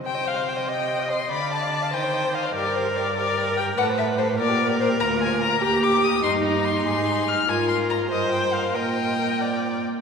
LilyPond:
<<
  \new Staff \with { instrumentName = "Violin" } { \time 6/8 \key c \minor \tempo 4. = 97 g''8 f''8 g''8 g''4 c'''8 | b''8 a''4 g''4 f''8 | d''8 c''8 d''8 d''4 g''8 | fis''8 e''8 c''8 d''4 c''8 |
\key ees \major bes''8 aes''8 bes''8 bes''8 d'''8 ees'''8 | c'''8 bes''8 c'''8 c'''4 f'''8 | aes''8 c'''8 bes''8 ees''8 g''8 f''8 | g''2~ g''8 r8 | }
  \new Staff \with { instrumentName = "Violin" } { \time 6/8 \key c \minor c''16 ees''16 c''16 ees''16 c''16 ees''16 c''16 ees''16 c''16 ees''16 c''16 ees''16 | d''16 f''16 d''16 f''16 d''16 f''16 ees''16 c''16 ees''16 c''16 ees''16 c''16 | g'16 bes'16 g'16 bes'16 g'16 bes'16 g'16 bes'16 g'16 bes'16 g'16 bes'16 | a'16 c''16 a'16 c''16 a'16 c''16 bes'16 g'16 bes'16 g'16 bes'16 g'16 |
\key ees \major f'4. g'4. | ees'4. aes'4. | bes'4. bes'4. | ees''4. d''4 r8 | }
  \new Staff \with { instrumentName = "Viola" } { \time 6/8 \key c \minor c''4. ees''4. | d''4. c''4. | bes'4. bes'4. | b'4. bes'4.~ |
\key ees \major bes'4. g'4. | ees'2. | f'4. c''4. | bes'2~ bes'16 r8. | }
  \new Staff \with { instrumentName = "Cello" } { \clef bass \time 6/8 \key c \minor c2. | d4. ees4. | g,2. | a,4. bes,4. |
\key ees \major d,4. ees,4. | g,4. aes,4. | aes,4. g,4. | bes,2~ bes,8 r8 | }
>>